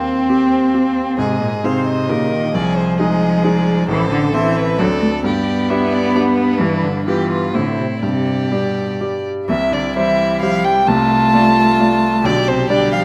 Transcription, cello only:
0, 0, Header, 1, 2, 480
1, 0, Start_track
1, 0, Tempo, 451128
1, 1263, Time_signature, 3, 2, 24, 8
1, 7029, Tempo, 466563
1, 7989, Tempo, 487013
1, 9909, Tempo, 458716
1, 13632, End_track
2, 0, Start_track
2, 0, Title_t, "Cello"
2, 0, Program_c, 0, 42
2, 0, Note_on_c, 0, 60, 62
2, 1250, Note_on_c, 0, 48, 65
2, 1266, Note_off_c, 0, 60, 0
2, 1485, Note_off_c, 0, 48, 0
2, 1492, Note_on_c, 0, 46, 60
2, 1577, Note_off_c, 0, 46, 0
2, 1729, Note_on_c, 0, 48, 60
2, 2212, Note_on_c, 0, 49, 67
2, 2228, Note_off_c, 0, 48, 0
2, 2456, Note_on_c, 0, 51, 77
2, 2472, Note_off_c, 0, 49, 0
2, 2692, Note_off_c, 0, 51, 0
2, 2699, Note_on_c, 0, 53, 74
2, 4104, Note_off_c, 0, 53, 0
2, 4127, Note_on_c, 0, 52, 85
2, 4361, Note_off_c, 0, 52, 0
2, 4367, Note_on_c, 0, 50, 69
2, 4599, Note_off_c, 0, 50, 0
2, 4605, Note_on_c, 0, 52, 69
2, 5079, Note_off_c, 0, 52, 0
2, 5088, Note_on_c, 0, 54, 78
2, 5173, Note_off_c, 0, 54, 0
2, 5324, Note_on_c, 0, 57, 73
2, 5409, Note_off_c, 0, 57, 0
2, 5569, Note_on_c, 0, 59, 88
2, 7023, Note_on_c, 0, 52, 75
2, 7039, Note_off_c, 0, 59, 0
2, 7254, Note_on_c, 0, 50, 60
2, 7270, Note_off_c, 0, 52, 0
2, 7485, Note_off_c, 0, 50, 0
2, 7492, Note_on_c, 0, 52, 63
2, 7973, Note_off_c, 0, 52, 0
2, 7978, Note_on_c, 0, 50, 61
2, 8215, Note_off_c, 0, 50, 0
2, 8223, Note_on_c, 0, 48, 52
2, 8301, Note_off_c, 0, 48, 0
2, 8467, Note_on_c, 0, 48, 62
2, 8945, Note_on_c, 0, 47, 46
2, 8960, Note_off_c, 0, 48, 0
2, 9426, Note_off_c, 0, 47, 0
2, 9902, Note_on_c, 0, 52, 63
2, 9985, Note_off_c, 0, 52, 0
2, 10143, Note_on_c, 0, 50, 56
2, 10227, Note_off_c, 0, 50, 0
2, 10388, Note_on_c, 0, 52, 59
2, 10873, Note_on_c, 0, 53, 67
2, 10888, Note_off_c, 0, 52, 0
2, 11114, Note_on_c, 0, 55, 68
2, 11130, Note_off_c, 0, 53, 0
2, 11351, Note_off_c, 0, 55, 0
2, 11358, Note_on_c, 0, 57, 73
2, 12765, Note_off_c, 0, 57, 0
2, 12789, Note_on_c, 0, 50, 71
2, 12873, Note_off_c, 0, 50, 0
2, 13026, Note_on_c, 0, 48, 64
2, 13257, Note_off_c, 0, 48, 0
2, 13263, Note_on_c, 0, 50, 62
2, 13510, Note_on_c, 0, 53, 72
2, 13526, Note_off_c, 0, 50, 0
2, 13632, Note_off_c, 0, 53, 0
2, 13632, End_track
0, 0, End_of_file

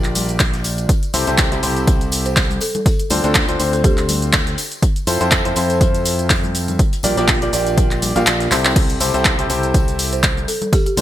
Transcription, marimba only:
0, 0, Header, 1, 2, 480
1, 0, Start_track
1, 0, Tempo, 491803
1, 870, Time_signature, 4, 2, 24, 8
1, 10748, End_track
2, 0, Start_track
2, 0, Title_t, "Marimba"
2, 0, Program_c, 0, 12
2, 2203, Note_on_c, 0, 72, 92
2, 2389, Note_off_c, 0, 72, 0
2, 2551, Note_on_c, 0, 69, 91
2, 2635, Note_off_c, 0, 69, 0
2, 2684, Note_on_c, 0, 69, 78
2, 2752, Note_off_c, 0, 69, 0
2, 3643, Note_on_c, 0, 69, 97
2, 3729, Note_off_c, 0, 69, 0
2, 3751, Note_on_c, 0, 67, 93
2, 4428, Note_off_c, 0, 67, 0
2, 9883, Note_on_c, 0, 72, 92
2, 10069, Note_off_c, 0, 72, 0
2, 10231, Note_on_c, 0, 69, 93
2, 10315, Note_off_c, 0, 69, 0
2, 10363, Note_on_c, 0, 69, 77
2, 10431, Note_off_c, 0, 69, 0
2, 10471, Note_on_c, 0, 67, 88
2, 10555, Note_off_c, 0, 67, 0
2, 10603, Note_on_c, 0, 67, 76
2, 10671, Note_off_c, 0, 67, 0
2, 10710, Note_on_c, 0, 72, 96
2, 10748, Note_off_c, 0, 72, 0
2, 10748, End_track
0, 0, End_of_file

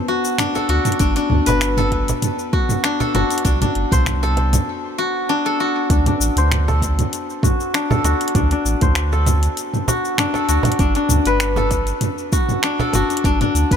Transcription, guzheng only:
0, 0, Header, 1, 2, 480
1, 0, Start_track
1, 0, Tempo, 612245
1, 786, Time_signature, 4, 2, 24, 8
1, 10793, End_track
2, 0, Start_track
2, 0, Title_t, "Guzheng"
2, 0, Program_c, 0, 107
2, 0, Note_on_c, 0, 62, 73
2, 0, Note_on_c, 0, 69, 67
2, 0, Note_on_c, 0, 72, 76
2, 65, Note_on_c, 0, 66, 75
2, 300, Note_off_c, 0, 62, 0
2, 303, Note_on_c, 0, 62, 99
2, 430, Note_off_c, 0, 69, 0
2, 433, Note_on_c, 0, 69, 69
2, 540, Note_off_c, 0, 66, 0
2, 543, Note_on_c, 0, 66, 72
2, 779, Note_off_c, 0, 62, 0
2, 781, Note_off_c, 0, 72, 0
2, 783, Note_on_c, 0, 62, 79
2, 907, Note_off_c, 0, 62, 0
2, 910, Note_on_c, 0, 62, 77
2, 1148, Note_on_c, 0, 71, 76
2, 1389, Note_off_c, 0, 69, 0
2, 1392, Note_on_c, 0, 69, 76
2, 1979, Note_off_c, 0, 66, 0
2, 1983, Note_on_c, 0, 66, 77
2, 2223, Note_off_c, 0, 62, 0
2, 2227, Note_on_c, 0, 62, 104
2, 2350, Note_off_c, 0, 69, 0
2, 2353, Note_on_c, 0, 69, 76
2, 2462, Note_off_c, 0, 66, 0
2, 2466, Note_on_c, 0, 66, 74
2, 2698, Note_off_c, 0, 62, 0
2, 2701, Note_on_c, 0, 62, 78
2, 2755, Note_off_c, 0, 71, 0
2, 2831, Note_off_c, 0, 62, 0
2, 2835, Note_on_c, 0, 62, 74
2, 3075, Note_on_c, 0, 72, 79
2, 3311, Note_off_c, 0, 69, 0
2, 3315, Note_on_c, 0, 69, 76
2, 3904, Note_off_c, 0, 66, 0
2, 3907, Note_on_c, 0, 66, 76
2, 4146, Note_off_c, 0, 62, 0
2, 4149, Note_on_c, 0, 62, 100
2, 4275, Note_off_c, 0, 69, 0
2, 4279, Note_on_c, 0, 69, 72
2, 4388, Note_off_c, 0, 66, 0
2, 4392, Note_on_c, 0, 66, 76
2, 4627, Note_off_c, 0, 62, 0
2, 4627, Note_off_c, 0, 72, 0
2, 4630, Note_on_c, 0, 62, 81
2, 4757, Note_off_c, 0, 62, 0
2, 4761, Note_on_c, 0, 62, 77
2, 4999, Note_on_c, 0, 72, 79
2, 5234, Note_off_c, 0, 69, 0
2, 5237, Note_on_c, 0, 69, 74
2, 5825, Note_off_c, 0, 66, 0
2, 5828, Note_on_c, 0, 66, 70
2, 6064, Note_off_c, 0, 62, 0
2, 6067, Note_on_c, 0, 62, 97
2, 6195, Note_off_c, 0, 69, 0
2, 6199, Note_on_c, 0, 69, 76
2, 6306, Note_off_c, 0, 66, 0
2, 6309, Note_on_c, 0, 66, 75
2, 6547, Note_off_c, 0, 62, 0
2, 6550, Note_on_c, 0, 62, 79
2, 6551, Note_off_c, 0, 72, 0
2, 6676, Note_off_c, 0, 62, 0
2, 6679, Note_on_c, 0, 62, 73
2, 6916, Note_on_c, 0, 72, 73
2, 7151, Note_off_c, 0, 69, 0
2, 7154, Note_on_c, 0, 69, 72
2, 7743, Note_off_c, 0, 66, 0
2, 7746, Note_on_c, 0, 66, 72
2, 7982, Note_off_c, 0, 62, 0
2, 7985, Note_on_c, 0, 62, 101
2, 8108, Note_off_c, 0, 69, 0
2, 8111, Note_on_c, 0, 69, 72
2, 8219, Note_off_c, 0, 66, 0
2, 8222, Note_on_c, 0, 66, 75
2, 8461, Note_off_c, 0, 62, 0
2, 8464, Note_on_c, 0, 62, 82
2, 8468, Note_off_c, 0, 72, 0
2, 8589, Note_off_c, 0, 62, 0
2, 8592, Note_on_c, 0, 62, 80
2, 8833, Note_on_c, 0, 71, 76
2, 9070, Note_off_c, 0, 69, 0
2, 9073, Note_on_c, 0, 69, 72
2, 9661, Note_off_c, 0, 66, 0
2, 9664, Note_on_c, 0, 66, 76
2, 9904, Note_off_c, 0, 62, 0
2, 9907, Note_on_c, 0, 62, 99
2, 10033, Note_off_c, 0, 69, 0
2, 10036, Note_on_c, 0, 69, 71
2, 10147, Note_off_c, 0, 66, 0
2, 10150, Note_on_c, 0, 66, 72
2, 10385, Note_off_c, 0, 62, 0
2, 10388, Note_on_c, 0, 62, 83
2, 10439, Note_off_c, 0, 71, 0
2, 10513, Note_off_c, 0, 62, 0
2, 10517, Note_on_c, 0, 62, 73
2, 10758, Note_on_c, 0, 71, 75
2, 10793, Note_off_c, 0, 62, 0
2, 10793, Note_off_c, 0, 66, 0
2, 10793, Note_off_c, 0, 69, 0
2, 10793, Note_off_c, 0, 71, 0
2, 10793, End_track
0, 0, End_of_file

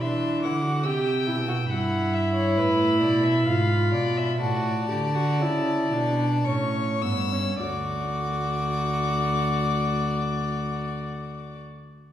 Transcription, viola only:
0, 0, Header, 1, 2, 480
1, 0, Start_track
1, 0, Key_signature, 2, "major"
1, 0, Tempo, 848656
1, 959, Time_signature, 3, 2, 24, 8
1, 1450, Tempo, 916031
1, 2410, Tempo, 995025
1, 2890, Tempo, 1065719
1, 3370, Tempo, 1151631
1, 3850, Tempo, 1195219
1, 5664, End_track
2, 0, Start_track
2, 0, Title_t, "Viola"
2, 0, Program_c, 0, 41
2, 7, Note_on_c, 0, 62, 79
2, 246, Note_on_c, 0, 64, 73
2, 255, Note_off_c, 0, 62, 0
2, 362, Note_off_c, 0, 64, 0
2, 365, Note_on_c, 0, 66, 74
2, 481, Note_on_c, 0, 67, 85
2, 489, Note_off_c, 0, 66, 0
2, 717, Note_off_c, 0, 67, 0
2, 720, Note_on_c, 0, 64, 79
2, 765, Note_off_c, 0, 64, 0
2, 837, Note_on_c, 0, 66, 76
2, 882, Note_off_c, 0, 66, 0
2, 964, Note_on_c, 0, 64, 93
2, 1926, Note_on_c, 0, 65, 86
2, 1934, Note_off_c, 0, 64, 0
2, 2407, Note_off_c, 0, 65, 0
2, 2410, Note_on_c, 0, 66, 90
2, 2641, Note_off_c, 0, 66, 0
2, 2651, Note_on_c, 0, 67, 71
2, 2773, Note_on_c, 0, 66, 81
2, 2780, Note_off_c, 0, 67, 0
2, 2903, Note_on_c, 0, 64, 72
2, 2910, Note_off_c, 0, 66, 0
2, 3133, Note_on_c, 0, 62, 76
2, 3140, Note_off_c, 0, 64, 0
2, 3373, Note_off_c, 0, 62, 0
2, 3377, Note_on_c, 0, 61, 78
2, 3603, Note_off_c, 0, 61, 0
2, 3611, Note_on_c, 0, 59, 63
2, 3731, Note_on_c, 0, 61, 71
2, 3737, Note_off_c, 0, 59, 0
2, 3851, Note_off_c, 0, 61, 0
2, 3853, Note_on_c, 0, 66, 82
2, 5458, Note_off_c, 0, 66, 0
2, 5664, End_track
0, 0, End_of_file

